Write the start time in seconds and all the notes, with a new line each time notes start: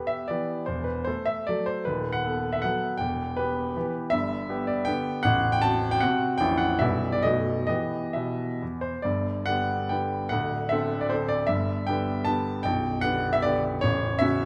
Already playing: B3 G4
0.07 E5
0.28 E3 B3 G4 D5
0.66 E1 E2 C5
0.84 B4
1.05 A3 A4 C5
1.26 E5
1.47 F#3 A3 A4 D5
1.66 C5
1.85 D#1 D#2 B4
2.12 F#5
2.25 B3 A4
2.53 E5
2.62 F#3 B3 A4 F#5
2.97 E1 E2 G5
3.37 B3 G4 B4
3.76 E3 B3 G4
4.10 G1 G2 E5
4.49 B3 G4
4.67 D5
4.85 D3 B3 G4 G5
5.23 A0 A1 F#5
5.52 G5
5.62 C4 F#4 A5
5.91 G5
6.00 C3 C4 F#4 F#5
6.38 A#0 A#1 E3 C#4 G5
6.42 E4
6.58 F#5
6.79 B0 B1 G3 B3 E4 E5
7.12 D5
7.23 B0 B1 A3 B3 F#4 D#5
7.67 E3 B3 G4 D#5
8.13 B2 E5
8.62 E2
8.81 C5
9.02 G1 G2 D5
9.46 D3 B3 G4 F#5
9.89 D3 B3 G4 G5
10.29 D1 D2 F#5
10.69 D3 C4 A4 E5
11.01 D5
11.10 D3 C4 A4 C5
11.29 D5
11.47 G1 G2 E5
11.87 D3 B3 G4 G5
12.25 D3 B3 G4 A5
12.63 B0 B1 G5
13.01 D3 B3 G4 F#5
13.33 E5
13.42 D3 B3 G4 D5
13.81 A0 A1 C#5
14.19 C#3 C#4 F#4 E5